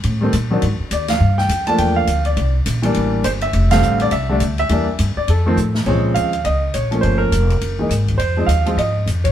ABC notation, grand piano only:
X:1
M:4/4
L:1/8
Q:"Swing" 1/4=206
K:F
V:1 name="Grand piano"
z6 d f- | f g2 a g f2 d- | d z4 z c e- | e f2 d e3 e- |
e2 z d A3 z | [K:Bbm] d2 f2 e2 d2 | c B6 z | c2 f2 e2 z d |]
V:2 name="Grand piano"
z [_E,G,A,C] z [E,^F,CD] z4 | z3 [F,A,B,D]3 z2 | z3 [E,G,B,D]3 z2 | z [D,G,A,C]3 z [D,G,A,D] z2 |
[E,G,B,D] z4 [_E,F,A,C] z2 | [K:Bbm] [D,F,A,C]3 z4 [F,=A,B,D]- | [F,=A,B,D]2 z3 [_F,_A,B,E] z2 | z [F,A,CE] z [F,A,CF] z4 |]